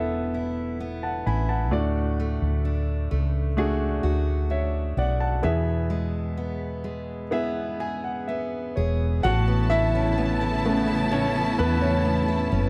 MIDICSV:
0, 0, Header, 1, 6, 480
1, 0, Start_track
1, 0, Key_signature, 3, "major"
1, 0, Tempo, 928793
1, 888, Time_signature, 4, 2, 24, 8
1, 3294, Tempo, 955414
1, 4734, Tempo, 937500
1, 6502, End_track
2, 0, Start_track
2, 0, Title_t, "Violin section"
2, 0, Program_c, 0, 48
2, 4733, Note_on_c, 0, 81, 91
2, 6502, Note_off_c, 0, 81, 0
2, 6502, End_track
3, 0, Start_track
3, 0, Title_t, "Grand piano"
3, 0, Program_c, 1, 0
3, 0, Control_c, 1, 64, 127
3, 0, Note_on_c, 1, 47, 50
3, 0, Note_on_c, 1, 59, 60
3, 0, Note_on_c, 1, 64, 57
3, 0, Note_on_c, 1, 69, 54
3, 0, Note_on_c, 1, 76, 71
3, 533, Note_on_c, 1, 81, 48
3, 536, Note_on_c, 1, 78, 42
3, 645, Note_off_c, 1, 81, 0
3, 646, Note_off_c, 1, 78, 0
3, 653, Note_on_c, 1, 83, 50
3, 655, Note_on_c, 1, 80, 42
3, 765, Note_off_c, 1, 83, 0
3, 766, Note_off_c, 1, 80, 0
3, 770, Note_on_c, 1, 81, 49
3, 775, Note_on_c, 1, 78, 44
3, 838, Note_off_c, 1, 59, 0
3, 841, Note_off_c, 1, 64, 0
3, 842, Note_off_c, 1, 69, 0
3, 842, Note_off_c, 1, 76, 0
3, 885, Note_on_c, 1, 57, 64
3, 886, Note_on_c, 1, 62, 56
3, 888, Note_on_c, 1, 45, 51
3, 889, Note_on_c, 1, 66, 58
3, 893, Note_on_c, 1, 74, 70
3, 896, Control_c, 1, 64, 0
3, 899, Note_off_c, 1, 47, 0
3, 996, Control_c, 1, 64, 127
3, 997, Note_off_c, 1, 81, 0
3, 999, Note_off_c, 1, 78, 0
3, 1587, Note_off_c, 1, 45, 0
3, 1797, Note_off_c, 1, 57, 0
3, 1798, Note_off_c, 1, 62, 0
3, 1799, Note_off_c, 1, 66, 0
3, 1801, Note_off_c, 1, 74, 0
3, 1844, Note_on_c, 1, 57, 67
3, 1848, Note_on_c, 1, 62, 57
3, 1850, Note_on_c, 1, 66, 60
3, 1852, Note_on_c, 1, 68, 73
3, 2330, Note_on_c, 1, 76, 55
3, 2333, Note_on_c, 1, 73, 46
3, 2559, Note_off_c, 1, 76, 0
3, 2561, Note_off_c, 1, 73, 0
3, 2575, Note_on_c, 1, 78, 55
3, 2577, Note_on_c, 1, 74, 47
3, 2686, Note_off_c, 1, 78, 0
3, 2688, Note_off_c, 1, 74, 0
3, 2690, Note_on_c, 1, 81, 52
3, 2693, Note_on_c, 1, 78, 41
3, 2762, Note_off_c, 1, 57, 0
3, 2764, Note_off_c, 1, 62, 0
3, 2765, Note_off_c, 1, 66, 0
3, 2766, Note_off_c, 1, 68, 0
3, 2805, Note_on_c, 1, 59, 61
3, 2805, Note_on_c, 1, 64, 60
3, 2809, Note_on_c, 1, 47, 56
3, 2809, Note_on_c, 1, 68, 59
3, 2813, Note_on_c, 1, 76, 74
3, 2818, Control_c, 1, 64, 0
3, 2917, Control_c, 1, 64, 127
3, 2919, Note_off_c, 1, 81, 0
3, 2921, Note_off_c, 1, 78, 0
3, 3511, Note_off_c, 1, 47, 0
3, 3721, Note_off_c, 1, 59, 0
3, 3721, Note_off_c, 1, 64, 0
3, 3723, Note_off_c, 1, 68, 0
3, 3725, Note_off_c, 1, 76, 0
3, 3765, Note_on_c, 1, 59, 62
3, 3767, Note_on_c, 1, 64, 56
3, 3770, Note_on_c, 1, 68, 57
3, 3775, Note_on_c, 1, 76, 68
3, 4012, Note_on_c, 1, 80, 52
3, 4125, Note_off_c, 1, 80, 0
3, 4131, Note_on_c, 1, 78, 46
3, 4242, Note_off_c, 1, 76, 0
3, 4246, Note_off_c, 1, 78, 0
3, 4250, Note_on_c, 1, 76, 54
3, 4477, Note_off_c, 1, 76, 0
3, 4492, Note_on_c, 1, 73, 49
3, 4684, Note_off_c, 1, 59, 0
3, 4686, Note_off_c, 1, 64, 0
3, 4687, Note_off_c, 1, 68, 0
3, 4716, Note_off_c, 1, 73, 0
3, 4731, Note_on_c, 1, 78, 99
3, 4738, Note_on_c, 1, 66, 81
3, 4742, Control_c, 1, 64, 0
3, 4819, Control_c, 1, 64, 127
3, 4961, Note_off_c, 1, 66, 0
3, 4968, Note_on_c, 1, 76, 97
3, 4972, Note_on_c, 1, 64, 75
3, 4981, Note_off_c, 1, 78, 0
3, 5454, Note_on_c, 1, 49, 52
3, 5458, Note_on_c, 1, 57, 51
3, 5460, Note_on_c, 1, 59, 63
3, 5676, Note_off_c, 1, 64, 0
3, 5699, Note_on_c, 1, 73, 82
3, 5702, Note_on_c, 1, 61, 72
3, 5716, Note_off_c, 1, 76, 0
3, 5775, Note_off_c, 1, 49, 0
3, 5777, Note_off_c, 1, 57, 0
3, 5778, Note_off_c, 1, 59, 0
3, 5922, Note_off_c, 1, 73, 0
3, 5923, Note_off_c, 1, 61, 0
3, 5935, Note_on_c, 1, 71, 78
3, 5939, Note_on_c, 1, 59, 63
3, 6047, Note_off_c, 1, 71, 0
3, 6049, Note_off_c, 1, 59, 0
3, 6054, Note_on_c, 1, 73, 70
3, 6056, Note_on_c, 1, 61, 56
3, 6393, Note_off_c, 1, 73, 0
3, 6394, Note_off_c, 1, 61, 0
3, 6502, End_track
4, 0, Start_track
4, 0, Title_t, "Steel-string acoustic guitar"
4, 0, Program_c, 2, 25
4, 0, Note_on_c, 2, 40, 58
4, 0, Note_on_c, 2, 57, 42
4, 0, Note_on_c, 2, 59, 43
4, 0, Note_on_c, 2, 64, 45
4, 176, Note_off_c, 2, 64, 0
4, 178, Note_on_c, 2, 64, 47
4, 409, Note_off_c, 2, 59, 0
4, 415, Note_on_c, 2, 59, 45
4, 650, Note_off_c, 2, 64, 0
4, 656, Note_on_c, 2, 64, 48
4, 889, Note_off_c, 2, 40, 0
4, 939, Note_off_c, 2, 59, 0
4, 940, Note_off_c, 2, 64, 0
4, 1133, Note_off_c, 2, 57, 0
4, 1135, Note_on_c, 2, 57, 50
4, 1369, Note_on_c, 2, 62, 46
4, 1601, Note_off_c, 2, 57, 0
4, 1607, Note_on_c, 2, 57, 48
4, 1842, Note_off_c, 2, 62, 0
4, 1848, Note_on_c, 2, 62, 47
4, 2083, Note_on_c, 2, 66, 51
4, 2319, Note_off_c, 2, 62, 0
4, 2325, Note_on_c, 2, 62, 47
4, 2564, Note_off_c, 2, 66, 0
4, 2570, Note_on_c, 2, 66, 49
4, 2806, Note_on_c, 2, 40, 61
4, 2858, Note_off_c, 2, 62, 0
4, 2859, Note_off_c, 2, 57, 0
4, 2859, Note_off_c, 2, 66, 0
4, 3049, Note_on_c, 2, 56, 47
4, 3294, Note_on_c, 2, 59, 44
4, 3523, Note_off_c, 2, 56, 0
4, 3529, Note_on_c, 2, 56, 46
4, 3767, Note_off_c, 2, 59, 0
4, 3769, Note_on_c, 2, 59, 47
4, 4011, Note_on_c, 2, 68, 46
4, 4253, Note_off_c, 2, 59, 0
4, 4255, Note_on_c, 2, 59, 45
4, 4491, Note_off_c, 2, 68, 0
4, 4497, Note_on_c, 2, 68, 46
4, 4733, Note_off_c, 2, 40, 0
4, 4735, Note_on_c, 2, 45, 71
4, 4781, Note_off_c, 2, 56, 0
4, 4783, Note_off_c, 2, 68, 0
4, 4855, Note_off_c, 2, 59, 0
4, 4855, Note_on_c, 2, 59, 50
4, 4977, Note_on_c, 2, 64, 64
4, 5097, Note_on_c, 2, 61, 59
4, 5211, Note_off_c, 2, 59, 0
4, 5213, Note_on_c, 2, 59, 58
4, 5327, Note_off_c, 2, 64, 0
4, 5333, Note_on_c, 2, 64, 62
4, 5448, Note_off_c, 2, 61, 0
4, 5454, Note_on_c, 2, 61, 59
4, 5570, Note_off_c, 2, 59, 0
4, 5572, Note_on_c, 2, 59, 54
4, 5688, Note_off_c, 2, 45, 0
4, 5694, Note_on_c, 2, 45, 75
4, 5813, Note_off_c, 2, 59, 0
4, 5815, Note_on_c, 2, 59, 58
4, 5932, Note_off_c, 2, 64, 0
4, 5938, Note_on_c, 2, 64, 62
4, 6051, Note_off_c, 2, 61, 0
4, 6057, Note_on_c, 2, 61, 49
4, 6171, Note_off_c, 2, 59, 0
4, 6173, Note_on_c, 2, 59, 58
4, 6287, Note_off_c, 2, 64, 0
4, 6293, Note_on_c, 2, 64, 60
4, 6406, Note_off_c, 2, 61, 0
4, 6412, Note_on_c, 2, 61, 58
4, 6502, Note_off_c, 2, 45, 0
4, 6502, Note_off_c, 2, 59, 0
4, 6502, Note_off_c, 2, 61, 0
4, 6502, Note_off_c, 2, 64, 0
4, 6502, End_track
5, 0, Start_track
5, 0, Title_t, "String section"
5, 0, Program_c, 3, 48
5, 4735, Note_on_c, 3, 52, 69
5, 4737, Note_on_c, 3, 59, 65
5, 4739, Note_on_c, 3, 64, 82
5, 4740, Note_on_c, 3, 49, 73
5, 4740, Note_on_c, 3, 57, 68
5, 6502, Note_off_c, 3, 49, 0
5, 6502, Note_off_c, 3, 52, 0
5, 6502, Note_off_c, 3, 57, 0
5, 6502, Note_off_c, 3, 59, 0
5, 6502, Note_off_c, 3, 64, 0
5, 6502, End_track
6, 0, Start_track
6, 0, Title_t, "Fretless electric bass"
6, 0, Program_c, 4, 35
6, 0, Note_on_c, 4, 28, 65
6, 631, Note_off_c, 4, 28, 0
6, 655, Note_on_c, 4, 33, 71
6, 893, Note_off_c, 4, 33, 0
6, 893, Note_on_c, 4, 38, 75
6, 1229, Note_off_c, 4, 38, 0
6, 1251, Note_on_c, 4, 38, 65
6, 1589, Note_off_c, 4, 38, 0
6, 1613, Note_on_c, 4, 37, 70
6, 2068, Note_off_c, 4, 37, 0
6, 2087, Note_on_c, 4, 38, 69
6, 2550, Note_off_c, 4, 38, 0
6, 2568, Note_on_c, 4, 35, 73
6, 2793, Note_off_c, 4, 35, 0
6, 2813, Note_on_c, 4, 40, 79
6, 4478, Note_off_c, 4, 40, 0
6, 4499, Note_on_c, 4, 28, 65
6, 4719, Note_off_c, 4, 28, 0
6, 4736, Note_on_c, 4, 33, 98
6, 5918, Note_off_c, 4, 33, 0
6, 5940, Note_on_c, 4, 40, 75
6, 6396, Note_off_c, 4, 40, 0
6, 6415, Note_on_c, 4, 30, 91
6, 6502, Note_off_c, 4, 30, 0
6, 6502, End_track
0, 0, End_of_file